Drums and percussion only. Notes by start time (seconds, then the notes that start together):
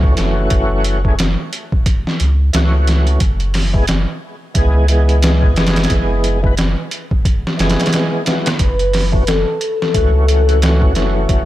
0.04 kick
0.17 snare, closed hi-hat
0.50 kick, closed hi-hat
0.84 closed hi-hat
1.05 kick
1.19 snare, closed hi-hat
1.53 closed hi-hat
1.72 kick
1.86 kick, closed hi-hat
2.07 snare
2.20 closed hi-hat
2.53 snare, closed hi-hat
2.87 snare, closed hi-hat
3.07 closed hi-hat
3.20 kick, closed hi-hat
3.40 closed hi-hat
3.54 snare, open hi-hat
3.74 kick
3.87 snare, closed hi-hat
4.55 kick, closed hi-hat
4.88 closed hi-hat
5.09 closed hi-hat
5.22 snare, closed hi-hat
5.43 kick
5.56 snare, closed hi-hat
5.67 snare, closed hi-hat
5.76 snare, closed hi-hat
5.83 snare, closed hi-hat
5.90 kick, closed hi-hat
6.24 closed hi-hat
6.44 kick
6.57 snare, closed hi-hat
6.91 closed hi-hat
7.11 kick
7.25 kick, closed hi-hat
7.47 snare
7.59 snare, closed hi-hat
7.69 snare, closed hi-hat
7.80 snare, closed hi-hat
7.86 snare, closed hi-hat
7.92 snare, closed hi-hat
8.26 snare, closed hi-hat
8.46 snare, closed hi-hat
8.59 kick, closed hi-hat
8.79 closed hi-hat
8.93 snare, open hi-hat
9.13 kick
9.27 snare, closed hi-hat
9.61 closed hi-hat
9.82 snare
9.94 kick, closed hi-hat
10.28 closed hi-hat
10.49 closed hi-hat
10.62 snare, closed hi-hat
10.82 kick
10.95 snare, closed hi-hat
11.29 kick, closed hi-hat